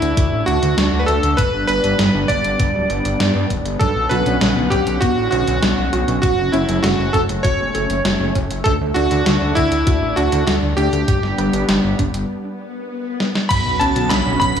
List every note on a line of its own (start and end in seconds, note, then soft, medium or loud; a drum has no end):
0.00 0.13 D2 medium
0.00 1.36 A3 medium
0.00 3.77 D4 medium
0.00 0.49 E4 medium
0.00 closed hi-hat medium
0.17 0.29 D2 loud
0.17 kick loud
0.17 closed hi-hat loud
0.33 0.44 A1 medium
0.46 0.59 D2 medium
0.46 1.02 F#4 loud
0.46 closed hi-hat medium
0.63 0.74 D2 medium
0.63 closed hi-hat medium
0.78 0.89 D2 loud
0.78 snare loud
0.78 closed hi-hat loud
0.93 1.04 D2 medium
0.99 1.07 B4 medium
1.06 1.20 D2 medium
1.06 1.39 A4 medium
1.06 closed hi-hat medium
1.23 1.35 D2 medium
1.23 closed hi-hat medium
1.37 1.50 G1 loud
1.37 3.78 G3 medium
1.37 6.19 B3 medium
1.37 1.66 B4 loud
1.37 kick loud
1.37 closed hi-hat medium
1.54 1.65 G1 medium
1.67 1.80 G1 medium
1.67 2.31 B4 loud
1.67 closed hi-hat medium
1.84 1.95 G1 medium
1.84 closed hi-hat medium
1.99 2.10 G1 loud
1.99 snare loud
1.99 closed hi-hat medium
2.15 2.26 G1 medium
2.28 2.41 G1 medium
2.28 3.46 D5 loud
2.28 kick medium
2.28 closed hi-hat medium
2.44 2.56 G1 medium
2.44 closed hi-hat medium
2.60 2.71 G1 loud
2.60 kick loud
2.60 closed hi-hat medium
2.75 2.86 D1 medium
2.90 3.01 G1 medium
2.90 closed hi-hat medium
3.05 3.16 G1 medium
3.05 closed hi-hat medium
3.20 3.32 G2 loud
3.20 snare loud
3.20 closed hi-hat medium
3.35 3.47 G2 medium
3.50 3.62 D1 medium
3.50 kick medium
3.50 closed hi-hat medium
3.65 3.77 G1 medium
3.65 closed hi-hat medium
3.79 3.92 B1 loud
3.79 6.21 D3 medium
3.79 8.62 C#4 medium
3.79 4.08 D4 loud
3.79 4.11 A4 medium
3.79 6.21 F#5 medium
3.79 kick loud
3.79 closed hi-hat medium
3.96 4.07 B1 medium
4.09 4.22 B1 medium
4.09 4.29 F#4 medium
4.09 4.73 B4 medium
4.09 closed hi-hat medium
4.26 4.38 B1 medium
4.26 closed hi-hat medium
4.41 4.53 B1 loud
4.41 4.52 D4 medium
4.41 snare loud
4.41 closed hi-hat medium
4.57 4.68 B1 medium
4.70 4.83 B1 medium
4.70 4.90 C#4 medium
4.70 5.02 G4 medium
4.70 kick medium
4.70 closed hi-hat medium
4.87 4.98 B1 medium
4.87 closed hi-hat medium
5.01 5.13 B1 loud
5.01 5.30 B3 medium
5.01 5.29 F#4 medium
5.01 kick loud
5.01 closed hi-hat medium
5.18 5.29 A1 medium
5.31 5.44 B1 medium
5.31 5.51 C#4 loud
5.31 6.20 F#4 medium
5.31 closed hi-hat medium
5.47 5.59 B1 medium
5.47 closed hi-hat medium
5.62 5.74 B1 loud
5.62 5.81 D4 medium
5.62 snare loud
5.62 closed hi-hat medium
5.78 5.89 B1 medium
5.93 6.04 B1 medium
5.93 6.21 F#4 medium
5.93 closed hi-hat medium
6.08 6.20 B1 medium
6.08 closed hi-hat medium
6.22 6.35 F#1 loud
6.22 11.04 A3 medium
6.22 6.51 F#4 loud
6.22 6.42 F#4 medium
6.22 kick loud
6.22 closed hi-hat medium
6.38 6.50 F#1 medium
6.52 6.65 F#1 medium
6.52 6.72 C#4 loud
6.52 6.84 E4 medium
6.52 closed hi-hat medium
6.69 6.80 F#1 medium
6.69 closed hi-hat medium
6.83 6.95 F#1 loud
6.83 7.11 A3 loud
6.83 7.14 F#4 loud
6.83 snare loud
6.83 closed hi-hat medium
6.99 7.10 F#1 medium
7.13 7.26 F#1 medium
7.13 7.42 C#4 loud
7.13 7.20 A4 loud
7.13 kick medium
7.13 closed hi-hat medium
7.29 7.41 F#1 medium
7.29 closed hi-hat medium
7.43 7.56 F#1 loud
7.43 7.72 F#4 loud
7.43 8.31 C#5 loud
7.43 kick loud
7.43 closed hi-hat medium
7.60 7.71 E1 medium
7.75 7.86 F#1 medium
7.75 7.93 A4 medium
7.75 closed hi-hat medium
7.90 8.01 F#1 medium
7.90 closed hi-hat medium
8.05 8.16 F#1 loud
8.05 8.16 F#4 medium
8.05 snare loud
8.05 closed hi-hat medium
8.20 8.32 F#1 medium
8.35 8.47 F#1 loud
8.35 8.54 C#4 medium
8.35 kick medium
8.35 closed hi-hat medium
8.51 8.62 F#1 medium
8.51 closed hi-hat medium
8.64 8.77 D2 loud
8.64 8.93 A3 medium
8.64 12.26 D4 medium
8.64 8.71 A4 loud
8.64 kick loud
8.64 closed hi-hat medium
8.81 8.92 D2 medium
8.94 9.07 D2 medium
8.94 9.14 D4 loud
8.94 9.58 F#4 loud
8.94 closed hi-hat medium
9.11 9.23 D2 medium
9.11 closed hi-hat medium
9.26 9.38 D2 loud
9.26 9.45 F#4 medium
9.26 snare loud
9.26 closed hi-hat medium
9.42 9.53 D2 medium
9.55 9.68 D2 medium
9.55 10.18 E4 loud
9.55 9.84 A4 medium
9.55 kick medium
9.55 closed hi-hat medium
9.72 9.83 D2 medium
9.72 closed hi-hat medium
9.87 9.98 D2 loud
9.87 10.05 F#4 medium
9.87 kick loud
9.87 closed hi-hat medium
10.02 10.13 A1 medium
10.16 10.29 D2 medium
10.16 10.36 D4 loud
10.16 10.45 F#4 medium
10.16 closed hi-hat medium
10.32 10.44 D2 medium
10.32 closed hi-hat medium
10.47 10.59 D2 loud
10.47 10.75 A3 loud
10.47 10.54 F#4 medium
10.47 snare loud
10.47 closed hi-hat medium
10.63 10.74 D2 medium
10.77 10.89 D2 loud
10.77 11.05 D4 loud
10.77 11.64 G4 loud
10.77 closed hi-hat medium
10.93 11.04 D2 medium
10.93 closed hi-hat medium
11.08 11.19 G1 loud
11.08 12.28 G3 medium
11.08 12.28 B3 medium
11.08 11.36 G4 loud
11.08 kick loud
11.08 closed hi-hat medium
11.23 11.35 G1 medium
11.23 snare soft
11.38 11.50 G1 medium
11.38 11.57 B4 medium
11.38 closed hi-hat medium
11.53 11.65 G1 medium
11.53 closed hi-hat medium
11.69 11.80 G1 loud
11.69 11.80 G4 medium
11.69 snare loud
11.69 closed hi-hat medium
11.84 11.95 G1 medium
11.99 12.10 G1 loud
11.99 12.17 D4 medium
11.99 kick medium
11.99 closed hi-hat medium
12.14 12.25 G1 medium
12.14 closed hi-hat medium
12.29 swell medium
13.20 snare medium
13.35 snare medium
13.49 13.62 B1 loud
13.49 14.60 D3 medium
13.49 14.60 F#3 medium
13.49 14.60 B3 medium
13.49 13.78 B3 medium
13.49 14.60 C#4 medium
13.49 14.60 F#4 medium
13.49 13.81 B5 loud
13.49 13.79 B6 loud
13.49 kick loud
13.49 closed hi-hat loud
13.49 crash loud
13.49 sub drop medium
13.66 13.77 B1 medium
13.79 13.92 B1 medium
13.79 13.99 C#4 loud
13.79 14.08 A5 medium
13.79 14.08 A6 medium
13.79 closed hi-hat medium
13.96 14.07 B1 medium
13.96 closed hi-hat medium
14.10 14.22 B1 loud
14.10 14.29 D4 medium
14.10 14.38 B5 loud
14.10 14.39 B6 loud
14.10 snare loud
14.10 clap loud
14.10 closed hi-hat loud
14.27 14.38 B1 medium
14.40 14.53 B1 loud
14.40 14.60 F#4 medium
14.40 14.60 B5 loud
14.40 14.60 B6 loud
14.40 kick medium
14.40 closed hi-hat medium
14.57 14.60 B1 medium
14.57 closed hi-hat medium